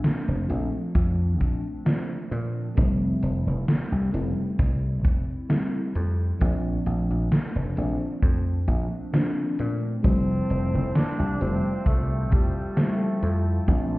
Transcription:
Already playing: fm electric piano F3 A3 C4 D4
0.04 snare, closed hi-hat
0.28 slap bass F1
0.48 slap bass A#1, fm electric piano F3 A3 C4 D4, closed hi-hat
0.95 slap bass F2, kick, closed hi-hat
1.41 slap bass A#1, kick, closed hi-hat
1.85 fm electric piano F3 A3 C4 D4, snare, closed hi-hat
2.31 slap bass A#2, closed hi-hat
2.75 slap bass F1, fm electric piano G3 A3 C4 E4, kick, closed hi-hat
3.23 slap bass F1, closed hi-hat
3.47 slap bass F1
3.68 snare, closed hi-hat
3.92 slap bass C2
4.12 slap bass F1, fm electric piano G3 A3 C4 E4, closed hi-hat
4.59 slap bass C2, kick, closed hi-hat
5.05 slap bass F1, kick, closed hi-hat
5.49 fm electric piano G3 A3 C4 E4, snare, closed hi-hat
5.95 slap bass F2, closed hi-hat
6.39 slap bass A#1, fm electric piano F3 A3 C4 D4, kick, closed hi-hat
6.86 slap bass A#1, closed hi-hat
7.10 slap bass A#1
7.32 snare, closed hi-hat
7.56 slap bass F1
7.75 slap bass A#1, fm electric piano F3 A3 C4 D4, closed hi-hat
8.22 slap bass F2, kick, closed hi-hat
8.68 slap bass A#1, kick, closed hi-hat
9.13 fm electric piano F3 A3 C4 D4, snare, closed hi-hat
9.59 slap bass A#2, closed hi-hat
10.03 slap bass F1, analog synth pad F3 E5 G5 A5, fm electric piano G3 A3 C4 E4, tenor saxophone C4, kick, closed hi-hat
10.50 slap bass F1, closed hi-hat
10.74 slap bass F1
10.95 tenor saxophone D4, snare, closed hi-hat
11.19 slap bass C2
11.39 slap bass F1, fm electric piano G3 A3 C4 E4, tenor saxophone C4, closed hi-hat
11.86 slap bass C2, tenor saxophone A3, kick, closed hi-hat
12.32 slap bass F1, tenor saxophone G3, kick, closed hi-hat
12.76 fm electric piano G3 A3 C4 E4, tenor saxophone A3, snare, closed hi-hat
13.23 slap bass F2, closed hi-hat
13.66 slap bass A#1, fm electric piano F3 A3 C4 D4, analog synth pad D4 C5 A#5, kick, closed hi-hat

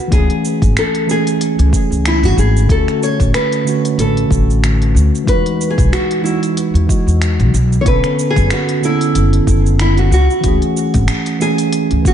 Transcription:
0.08 tine electric piano E3 A3
0.12 upright bass C#2, tine electric piano C#4 G#4, nylon-string guitar G#4, kick, closed hi-hat, cabasa
0.30 closed hi-hat
0.45 cabasa
0.62 upright bass G#1, kick, closed hi-hat, cabasa
0.77 nylon-string guitar A4, finger snap, closed hi-hat, cabasa
0.95 closed hi-hat
1.06 tine electric piano E3 A3 C#4 G#4, cabasa
1.11 nylon-string guitar G#4
1.27 closed hi-hat, cabasa
1.41 closed hi-hat, cabasa
1.59 upright bass C#2, closed hi-hat
1.68 tine electric piano E3 A3
1.73 tine electric piano C#4 G#4, kick, cabasa
1.91 upright bass C#2, cabasa
2.05 nylon-string guitar E4, finger snap, closed hi-hat, cabasa
2.23 upright bass G#1, nylon-string guitar F#4, closed hi-hat
2.37 upright bass G#1, nylon-string guitar G#4, cabasa
2.57 cabasa
2.66 upright bass D2, tine electric piano D3 A3, kick
2.70 tine electric piano C#4 F#4, nylon-string guitar A4, closed hi-hat, cabasa
2.88 finger snap, closed hi-hat
3.03 nylon-string guitar C#5, cabasa
3.20 upright bass A1, kick, closed hi-hat, cabasa
3.34 nylon-string guitar B4, finger snap, closed hi-hat, cabasa
3.52 closed hi-hat
3.64 tine electric piano D3 A3 C#4, cabasa
3.69 tine electric piano F#4
3.85 closed hi-hat, cabasa
3.98 upright bass A1, nylon-string guitar A4, closed hi-hat, cabasa
4.17 closed hi-hat
4.27 upright bass A1, tine electric piano D3 A3, kick
4.32 tine electric piano C#4 F#4, cabasa
4.50 cabasa
4.64 finger snap, closed hi-hat, cabasa
4.82 closed hi-hat
4.95 upright bass D2, cabasa
5.15 cabasa
5.24 upright bass E2, tine electric piano E3 G#3, kick
5.28 tine electric piano D#4 F#4, nylon-string guitar B4, closed hi-hat, cabasa
5.46 closed hi-hat
5.61 cabasa
5.70 nylon-string guitar G#4
5.78 upright bass B1, kick, closed hi-hat, cabasa
5.92 nylon-string guitar F#4, finger snap, closed hi-hat, cabasa
6.11 closed hi-hat
6.22 tine electric piano E3 G#3 D#4, nylon-string guitar E4, cabasa
6.26 tine electric piano F#4
6.43 closed hi-hat, cabasa
6.57 closed hi-hat, cabasa
6.74 upright bass E2, closed hi-hat
6.87 tine electric piano E3 G#3 F#4 D#5, kick, cabasa
7.07 upright bass E2, cabasa
7.22 finger snap, closed hi-hat, cabasa
7.39 upright bass B1, closed hi-hat
7.54 upright bass B1, cabasa
7.72 cabasa
7.81 tine electric piano D3 B3, nylon-string guitar C#5
7.86 upright bass B1, tine electric piano C#4 A4, nylon-string guitar B4, kick, closed hi-hat, cabasa
8.04 finger snap, closed hi-hat
8.19 cabasa
8.30 nylon-string guitar G#4
8.36 upright bass F#1, kick, closed hi-hat, cabasa
8.50 nylon-string guitar F#4, finger snap, closed hi-hat, cabasa
8.69 closed hi-hat
8.81 tine electric piano D3 B3 C#4 A4, nylon-string guitar E4, cabasa
9.01 closed hi-hat, cabasa
9.15 upright bass F#1, closed hi-hat, cabasa
9.33 closed hi-hat
9.45 upright bass F#1, tine electric piano D3 B3 C#4, kick, cabasa
9.49 tine electric piano A4
9.66 cabasa
9.79 nylon-string guitar E4, finger snap, closed hi-hat, cabasa
9.97 nylon-string guitar F#4, closed hi-hat
10.11 upright bass C#2, nylon-string guitar F#4, cabasa
10.30 cabasa
10.40 upright bass C#2, tine electric piano E3 A3, kick, closed hi-hat
10.44 tine electric piano C#4 G#4, cabasa
10.62 closed hi-hat
10.77 cabasa
10.94 upright bass G#1, kick, closed hi-hat, cabasa
11.08 finger snap, closed hi-hat, cabasa
11.26 closed hi-hat
11.39 tine electric piano E3 A3 C#4, nylon-string guitar G#4, cabasa
11.43 tine electric piano G#4
11.58 closed hi-hat, cabasa
11.73 closed hi-hat, cabasa
11.91 upright bass C#2, closed hi-hat
12.02 tine electric piano E3 A3, kick
12.06 tine electric piano C#4 G#4, nylon-string guitar F#4, cabasa

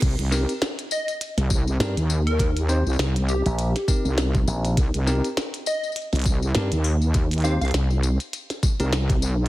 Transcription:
0.02 wobble bass C2, kick, closed hi-hat, tambourine, crash
0.11 tambourine
0.18 wobble bass C2, closed hi-hat
0.32 tine electric piano C4 D#4 G4 A#4, snare, tambourine
0.49 closed hi-hat, tambourine
0.62 snare, closed hi-hat, tambourine
0.79 closed hi-hat, tambourine
0.91 digital synth lead D#5, tambourine
1.08 closed hi-hat, tambourine
1.21 closed hi-hat, tambourine
1.37 wobble bass C2, snare, closed hi-hat, tambourine
1.50 kick, tambourine
1.68 tambourine
1.80 slap bass G2, tine electric piano C4 D#4 G4 A#4, snare, closed hi-hat, tambourine
1.97 wobble bass D#2, closed hi-hat, tambourine
2.10 tambourine
2.27 digital synth lead A#4, closed hi-hat
2.39 kick, closed hi-hat, tambourine
2.57 closed hi-hat, tambourine
2.69 tine electric piano C4 D#4 G4 C5, tambourine
2.86 wobble bass C2, tambourine
2.90 tambourine
2.93 tambourine
2.96 wobble bass C2, snare, closed hi-hat, tambourine
2.99 tambourine
3.16 closed hi-hat, tambourine
3.29 digital synth lead G4, tambourine
3.46 slap bass A#1, closed hi-hat, tambourine
3.59 closed hi-hat, tambourine
3.76 snare, closed hi-hat, tambourine
3.88 tine electric piano C4 D#4 G4 A#4, kick, tambourine
4.05 wobble bass C2, tambourine
4.18 snare, closed hi-hat, tambourine
4.35 kick, tambourine
4.47 slap bass A#1, tambourine
4.65 closed hi-hat, tambourine
4.77 wobble bass C2, kick, closed hi-hat, tambourine
4.94 wobble bass C2, closed hi-hat, tambourine
5.07 tine electric piano C4 D#4 G4 A#4, snare, tambourine
5.25 closed hi-hat, tambourine
5.37 snare, closed hi-hat, tambourine
5.54 closed hi-hat, tambourine
5.66 digital synth lead D#5, tambourine
5.83 tambourine
5.92 tambourine
5.96 closed hi-hat, tambourine
6.02 tambourine
6.13 wobble bass C2, snare, closed hi-hat, tambourine
6.15 closed hi-hat
6.19 closed hi-hat
6.22 closed hi-hat
6.24 kick, closed hi-hat, tambourine
6.42 tambourine
6.55 slap bass G2, tine electric piano C4 D#4 G4 A#4, snare, closed hi-hat, tambourine
6.72 wobble bass D#2, closed hi-hat, tambourine
6.84 tambourine
7.02 tambourine
7.14 kick, closed hi-hat, tambourine
7.31 closed hi-hat, tambourine
7.33 closed hi-hat
7.38 closed hi-hat
7.40 closed hi-hat
7.42 tine electric piano C4 D#4 G4 C5, digital synth lead F5, closed hi-hat, tambourine
7.61 wobble bass C2, digital synth lead F5, closed hi-hat, tambourine
7.65 closed hi-hat
7.68 closed hi-hat
7.71 wobble bass C2, snare, closed hi-hat
7.74 closed hi-hat, tambourine
7.90 tambourine
8.03 tambourine
8.20 closed hi-hat, tambourine
8.33 closed hi-hat, tambourine
8.50 snare, closed hi-hat, tambourine
8.63 kick, tambourine
8.80 wobble bass C2, tine electric piano C4 D#4 G4 A#4, closed hi-hat, tambourine
8.93 snare, closed hi-hat, tambourine
9.10 kick, closed hi-hat, tambourine
9.22 tambourine
9.30 wobble bass B1

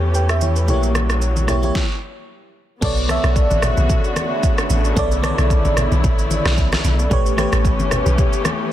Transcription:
Already playing: sub bass E2, string section E3 A3 B3 C#4 G4, fm electric piano A3 G4 B4 C#5
0.14 fm electric piano B4 G5, shaker
0.29 fm electric piano G4 E5, cross-stick, shaker
0.41 fm electric piano E4 C#5, high conga, shaker
0.56 fm electric piano B4, shaker
0.67 sub bass A#1, string section F#3 G3 A#3, fm electric piano A3 E4 G4 C#5, low conga, shaker
0.73 fm electric piano A#3
0.83 shaker
0.95 cross-stick, high conga, shaker
1.10 cross-stick, shaker
1.22 shaker
1.36 high conga, shaker
1.47 fm electric piano A#3 E4 G4 C#5, cross-stick, high conga, low conga, shaker
1.62 fm electric piano A#3 E4 G4 C#5, high conga, shaker
1.75 kick, snare
2.81 log drum bass B1, string section C#3 D3 A3 B3 F#4, fm electric piano B3 A4 C#5 D5, kick, crash, low conga, shaker
2.97 shaker
3.08 fm electric piano B3 A4 C#5 E5, cross-stick, high conga, shaker
3.24 log drum bass B1, cross-stick, shaker
3.36 kick, shaker
3.51 log drum bass A1, high conga, shaker
3.62 cross-stick, low conga, shaker
3.77 log drum bass B1, high conga, shaker
3.89 kick, low conga, shaker
4.04 shaker
4.16 cross-stick, high conga, shaker
4.43 kick, shaker
4.58 cross-stick, shaker
4.70 log drum bass A1, high conga, shaker
4.85 shaker
4.96 log drum bass B1, fm electric piano B3 A4 C#5 D5, string section E4, kick, low conga, shaker
5.12 shaker
5.22 fm electric piano B3 A4 C#5 D5, cross-stick, high conga, shaker
5.38 log drum bass B1, cross-stick, shaker
5.50 kick, shaker
5.65 log drum bass A1, high conga, shaker
5.77 cross-stick, low conga, shaker
5.92 log drum bass B1, high conga, shaker
6.04 log drum bass A1, kick, low conga, shaker
6.19 shaker
6.31 high conga, shaker
6.45 log drum bass B1, cross-stick, snare
6.58 kick, shaker
6.72 cross-stick, snare, shaker
6.84 log drum bass B1, high conga, shaker
6.99 shaker
7.10 log drum bass A1, string section E3 A3 B3 C#4 G4, fm electric piano A3 G4 B4 C#5, kick, low conga, shaker
7.26 shaker
7.37 fm electric piano A3 G4 B4 C#5, cross-stick, high conga, shaker
7.53 log drum bass A1, cross-stick, shaker
7.65 kick, shaker
7.79 log drum bass G1, high conga, shaker
7.91 cross-stick, low conga, shaker
8.06 log drum bass B1, high conga, shaker
8.18 kick, low conga, shaker
8.33 shaker
8.45 cross-stick, high conga, shaker

